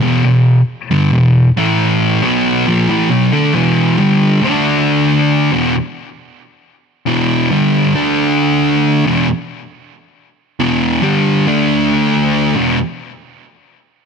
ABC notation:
X:1
M:4/4
L:1/16
Q:1/4=68
K:Em
V:1 name="Distorted electric guitar" clef=bass
[E,,B,,] [E,,B,,]2 z [G,,D,] [E,,B,,]2 [A,,E,A,]3 [B,,F,B,]2 [^A,,=F,] [=A,,E,] [B,,^F,] [D,A,] | [E,,B,,E,]2 [G,,D,G,]2 [D,A,D]4- [D,A,D] [E,,B,,] z6 | [E,,B,,E,]2 [G,,D,G,]2 [D,A,D]4- [D,A,D] [E,,B,,] z6 | [E,,B,,E,]2 [G,,D,G,]2 [D,A,D]4- [D,A,D] [E,,B,,] z6 |]